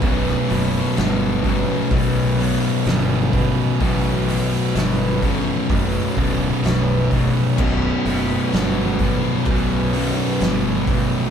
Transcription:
<<
  \new Staff \with { instrumentName = "Synth drone" } { \time 4/4 \key c \lydian \tempo 4 = 64 <b fis' b'>1~ | <b fis' b'>1~ | <b fis' b'>1 | }
  \new Staff \with { instrumentName = "Distorted electric guitar" } { \clef bass \time 4/4 \key c \lydian <b,, fis, b,>4. <b,, fis, b,>2~ <b,, fis, b,>8 | <b,, fis, b,>4. <b,, fis, b,>2~ <b,, fis, b,>8 | <b,, fis, b,>4. <b,, fis, b,>2~ <b,, fis, b,>8 | }
  \new Staff \with { instrumentName = "Distorted electric guitar" } { \clef bass \time 4/4 \key c \lydian <b,, fis, b,>2~ <b,, fis, b,>8 <b,, fis, b,>8 <b,, fis, b,>4 | <b,, fis, b,>2~ <b,, fis, b,>8 <b,, fis, b,>8 <b,, fis, b,>4 | <b,, fis, b,>2~ <b,, fis, b,>8 <b,, fis, b,>8 <b,, fis, b,>4 | }
  \new Staff \with { instrumentName = "Overdriven electric guitar" } { \clef bass \time 4/4 \key c \lydian <b,, fis, b,>8 <b,, fis, b,>8 <b,, fis, b,>8 <b,, fis, b,>8 <b,, fis, b,>8 <b,, fis, b,>8 <b,, fis, b,>8 <b,, fis, b,>8 | <b,, fis, b,>8 <b,, fis, b,>8 <b,, fis, b,>8 <b,, fis, b,>8 <b,, fis, b,>8 <b,, fis, b,>8 <b,, fis, b,>8 <b,, fis, b,>8 | <b,, fis, b,>8 <b,, fis, b,>8 <b,, fis, b,>8 <b,, fis, b,>8 <b,, fis, b,>8 <b,, fis, b,>8 <b,, fis, b,>8 <b,, fis, b,>8 | }
  \new Staff \with { instrumentName = "Fingered electric bass" } { \clef bass \time 4/4 \key c \lydian b,,,8 fis,,8 g,,4 b,,4 g,,4 | a,,4 g,,4 fis,,8 d,,8 b,,,4 | b,,,8 fis,,8 g,,4 b,,4 g,,4 | }
  \new DrumStaff \with { instrumentName = "Drums" } \drummode { \time 4/4 <hho bd>16 sn16 hho8 <hho sn>8 <hho bd>8 <hho bd>8 hho8 <hho sn>8 <hho bd>8 | <hho bd>8 hho8 <hho sn>8 <hho bd>8 <hho bd>8 <hho bd>8 <hho sn>8 <hho bd>8 | <cymc bd>8 hho8 <hho sn>8 <hho bd>8 <hho bd>8 hho8 <hho sn>8 <hho bd>8 | }
>>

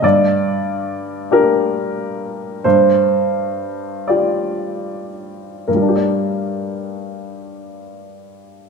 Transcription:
\new Staff \with { instrumentName = "Grand piano" } { \time 6/8 \key g \minor \tempo 4. = 40 << { d''4. bes'4. | c''4. d''4 r8 | <g, g d' g' bes' d''>2. | } \\ { g,4. <d' g'>4. | g,4. <f' g'>4. | r2. | } >> }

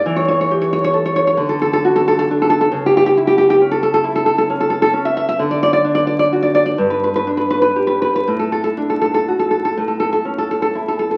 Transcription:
\new Staff \with { instrumentName = "Nylon-string guitar" } { \time 6/8 \key d \major \tempo 4. = 43 << { r32 cis''32 cis''32 cis''32 r32 cis''32 cis''32 cis''32 r32 cis''32 cis''32 cis''32 r32 a'32 a'32 a'32 r32 a'32 a'32 a'32 r32 a'32 a'32 a'32 | r32 g'32 g'32 g'32 r32 g'32 g'32 g'32 r32 a'32 a'32 a'32 r32 a'32 a'32 a'32 r32 a'32 a'32 a'32 r32 e''32 e''32 e''32 | r32 d''32 d''32 d''32 r32 d''32 d''32 d''32 r32 d''32 d''32 d''32 r32 b'32 b'32 b'32 r32 b'32 b'32 b'32 r32 b'32 b'32 b'32 | r32 a'32 a'32 a'32 r32 a'32 a'32 a'32 r32 a'32 a'32 a'32 r32 a'32 a'32 a'32 r32 a'32 a'32 a'32 r32 a'32 a'32 a'32 | } \\ { e8 g'8 a'8 d8 fis'8 d'8 | cis8 e'8 cis'8 e'8 cis'8 cis'8 | d8 d'8 fis'8 g,8 d'8 g'8 | a,8 d'8 fis'8 a,8 cis'8 e'8 | } >> }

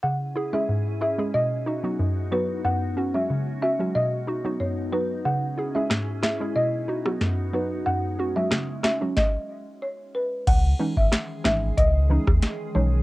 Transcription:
<<
  \new Staff \with { instrumentName = "Marimba" } { \time 4/4 \key cis \minor \tempo 4 = 92 fis''8 r16 e''8 r16 e''8 dis''8. r8. b'16 r16 | fis''8 r16 e''8 r16 e''8 dis''8. r16 cis''16 r16 b'16 r16 | fis''8 r16 e''8 r16 e''8 dis''8. r8. b'16 r16 | fis''8 r16 e''8 r16 e''8 dis''8. r16 cis''16 r16 b'16 r16 |
fis''8 r16 e''8 r16 e''8 dis''8. r8. cis''16 r16 | }
  \new Staff \with { instrumentName = "Ambient pad" } { \time 4/4 \key cis \minor r2 fis'2~ | fis'1 | r2 fis'2~ | fis'2 r2 |
<dis e gis cis' gis'>1 | }
  \new Staff \with { instrumentName = "Synth pluck" } { \time 4/4 \key cis \minor << { r8 <e' gis'>16 <gis cis' e' gis'>16 r8 <e' gis'>16 <gis cis' e' gis'>16 r8 <dis' fis'>16 <fis b dis' fis'>16 r8 <fis b dis' fis'>16 r16 | r8 <cis' fis'>16 <fis gis cis' fis'>16 r8 <cis' fis'>16 <fis gis cis' fis'>16 r8 <dis' fis'>16 <fis b dis' fis'>16 r8 <fis b dis' fis'>16 r16 | r8 <e' gis'>16 <gis cis' e' gis'>16 r8 <e' gis'>16 <gis cis' e' gis'>16 r8 <dis' fis'>16 <fis b dis' fis'>16 r8 <fis b dis' fis'>16 r16 | r8 <cis' fis'>16 <fis gis cis' fis'>16 r8 <cis' fis'>16 <fis gis cis' fis'>16 r2 |
r8 <e gis cis' dis'>16 r8. <e gis cis' dis'>16 r8. <e gis cis' dis'>16 r8. <e gis cis' dis'>16 r16 | } \\ { cis4 gis,4 b,4 fis,4 | fis,4 cis4 b,4 fis,4 | cis4 gis,4 b,4 fis,4 | fis,4 cis4 r2 |
r1 | } >> }
  \new Staff \with { instrumentName = "Sub bass" } { \clef bass \time 4/4 \key cis \minor r1 | r1 | r1 | r1 |
cis,8 r16 fis,,16 r8 gis,,8 cis,8. dis,16 r8 b,,8 | }
  \new DrumStaff \with { instrumentName = "Drums" } \drummode { \time 4/4 r4 r4 r4 r4 | r4 r4 r4 r4 | r4 <ss sn>8 <ss sn>8 r8. ss16 sn4 | r4 <ss sn>8 <ss sn>8 <bd sn>4 r4 |
<cymc hh bd>8. bd16 <hh ss sn>8 <bd ss sn>8 <hh bd>8. <bd ss>16 <hh sn>4 | }
>>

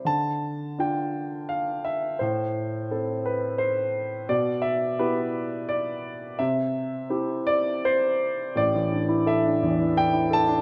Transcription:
\new Staff \with { instrumentName = "Grand piano" } { \time 3/4 \key a \minor \tempo 4 = 86 << { a''4 g''4 f''8 e''8 | c''4. b'8 c''4 | d''8 e''8 b'4 d''4 | e''4. d''8 c''4 |
d''4 e''4 g''8 a''8 | } \\ { d4 <d' f'>2 | a,4 <c' e' a'>2 | b,4 <b e' g'>2 | c4 <c' e' g'>2 |
<a,, a,>16 e16 d'16 e'16 a'16 d'16 <e, e>16 e16 d'16 e'16 a'16 d'16 | } >> }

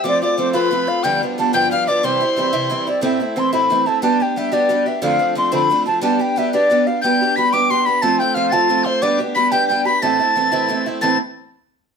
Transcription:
<<
  \new Staff \with { instrumentName = "Tin whistle" } { \time 6/8 \key c \major \tempo 4. = 120 d'''8 d'''4 b''4. | g'''8 r4 g'''8 f'''8 d'''8 | c'''2~ c'''8 r8 | \key a \minor r2. |
r2. | r2. | r2. | g'''4 b'''8 d''''8 c''''8 b'''8 |
a'''8 g'''8 f'''8 a'''4 c'''8 | d'''8 r8 b'''8 g'''8 g'''8 b'''8 | a'''2~ a'''8 r8 | a'''8 r2 r8 | }
  \new Staff \with { instrumentName = "Flute" } { \time 6/8 \key c \major d''8 d''8 c''8 b'4 f''8 | g''8 r8 a''8 g''8 f''8 d''8 | c''2~ c''8 d''8 | \key a \minor e''4 c'''8 b''4 a''8 |
a''8 g''8 e''8 d''4 e''8 | f''4 c'''8 b''4 a''8 | a''8 g''8 e''8 d''4 f''8 | g''4 b''8 d'''8 c'''8 b''8 |
a''8 g''8 f''8 a''4 c''8 | d''8 r8 b''8 g''8 g''8 b''8 | a''2~ a''8 r8 | a''8 r2 r8 | }
  \new Staff \with { instrumentName = "Twelve-string acoustic guitar" } { \time 6/8 \key c \major <f a c' f'>8 <a c' f'>8 <f a c' f'>8 <f a c' f'>8 <f a c' f'>8 <a c' f'>8 | <g, d f g b d'>8 <f g b d'>8 <f g b d'>8 <g, d f g b d'>8 <f g b d'>8 <f g b d'>8 | <c e g c' e'>8 <g c' e'>8 <e g c' e'>8 <c e g c' e'>8 <e g c' e'>8 <g c' e'>8 | \key a \minor <a, e a c' e'>8 <a c' e'>8 <e a c' e'>8 <a, e a c' e'>8 <e a c' e'>8 <a c' e'>8 |
<g b d' g'>8 <b d' g'>8 <g b d' g'>8 <g b d' g'>8 <g b d' g'>8 <b d' g'>8 | <f, d f a c' d'>8 <f a c' d'>8 <f a c' d'>8 <f, d f a c' d'>8 <f a c' d'>8 <f a c' d'>8 | <g b d' g'>8 <b d' g'>8 <g b d' g'>8 <g b d' g'>8 <g b d' g'>8 <b d' g'>8 | <g b d' g'>8 <b d' g'>8 <g b d' g'>8 <g b d' g'>8 <g b d' g'>8 <b d' g'>8 |
<f a c' f'>8 <a c' f'>8 <f a c' f'>8 <f a c' f'>8 <f a c' f'>8 <a c' f'>8 | <g b d' g'>8 <b d' g'>8 <g b d' g'>8 <g b d' g'>8 <g b d' g'>8 <b d' g'>8 | <a, e a c' e'>8 <a c' e'>8 <e a c' e'>8 <a, e a c' e'>8 <e a c' e'>8 <a c' e'>8 | <a, e a c' e'>8 r2 r8 | }
>>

